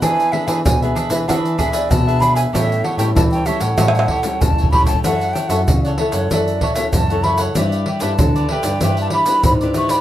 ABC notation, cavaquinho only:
X:1
M:4/4
L:1/16
Q:1/4=96
K:F#phr
V:1 name="Cavaquinho"
[D^GBe]2 [DGBe] [DGBe] z [GBe] [DGBe] [GBe] [DGBe]2 [DGBe] [GBe]2 [GBe] [DGBe] [GBe] | [GAcg]2 [GAcg] [GAcg] z [Acg] [GAcg] [Acg] [GAc]2 [GAcg] [Acg]2 [Acg] [GAcg] [Acg] | [EAcf]2 [EAcf] [EAcf] z [Acf] [EAcf] [Acf] [EAf]2 [EAcf] [Acf]2 [Acf] [EAcf] [Acf] | [EGBd]2 [EGBd] [EGBd] z [GBd] [EGBd] [GBd] [EGBd]2 [EGBd] [GBd]2 [GBd] [EGBd] [GBd] |]